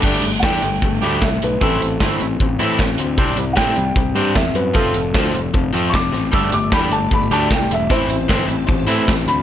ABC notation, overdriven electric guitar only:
X:1
M:4/4
L:1/8
Q:1/4=153
K:Ador
V:1 name="Overdriven electric guitar"
[G,A,D] [G,A,] [G,A,D] [G,A,] [G,A,] [G,A,D] [G,A,] [G,A,] | [E,CE] [E,C] [E,CE] [E,C] [E,C] [E,CE] [E,C] [E,C] | [G,CD] [G,C] [G,CD] [G,C] [G,C] [G,CD] [G,C] [G,C] | [=F,C=F] [F,C] [F,CF] [F,C] [F,C] [F,CF] [F,C] [F,C] |
[G,A,D] [G,A,] [G,A,D] [G,A,] [G,A,] [G,A,D] [G,A,] [G,A,] | [E,CE] [E,C] [E,CE] [E,C] [E,C] [E,CE] [E,C] [E,C] |]